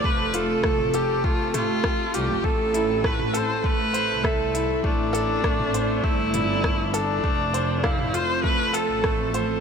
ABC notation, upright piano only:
X:1
M:4/4
L:1/8
Q:1/4=100
K:Am
V:1 name="Upright piano"
A, F A, A A, A, A F | A, E A, A A, c e E | A, A A, c A, E A, A | A, c f F A, A A, c |]